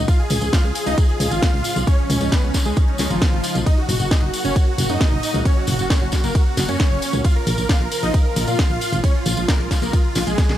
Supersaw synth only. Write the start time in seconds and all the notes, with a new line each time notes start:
0.08 F4 F5
0.19 G#4
0.30 G#4
0.42 G#4
0.53 F4 F5
0.64 G#4
0.75 G#4
0.86 D#4 D#5
0.97 G#4
1.09 G#4
1.20 G#4
1.31 F4 F5
1.87 C#4 C#5
1.98 C#4
2.10 C#4
2.21 C#4
2.32 B3 B4
2.43 C#4
2.54 C#4
2.66 G#3 G#4
2.77 C#4
2.88 C#4
2.99 C#4
3.10 F3 F4
3.66 D#4 D#5
3.78 F#4
3.89 F#4
4.00 F#4
4.11 D#4 D#5
4.22 F#4
4.34 F#4
4.45 C#4 C#5
4.56 F#4
4.67 F#4
4.79 F#4
4.90 D#4 D#5
5.45 C#4 C#5
5.57 F#4
5.68 F#4
5.79 F#4
5.90 C#4 C#5
6.02 F#4
6.13 F#4
6.24 A#3 A#4
6.35 F#4
6.46 F#4
6.57 F#4
6.69 C#4 C#5
7.25 F4 F5
7.36 A#4
7.47 A#4
7.58 A#4
7.69 F4 F5
7.81 A#4
7.92 A#4
8.03 D#4 D#5
8.14 A#4
8.26 A#4
8.37 A#4
8.48 F4 F5
9.04 C#4 C#5
9.15 F4
9.26 F4
9.37 F4
9.49 A#3 A#4
9.60 F4
9.71 F4
9.82 A#3 A#4
9.93 F4
10.04 F4
10.16 F4
10.27 G#3 G#4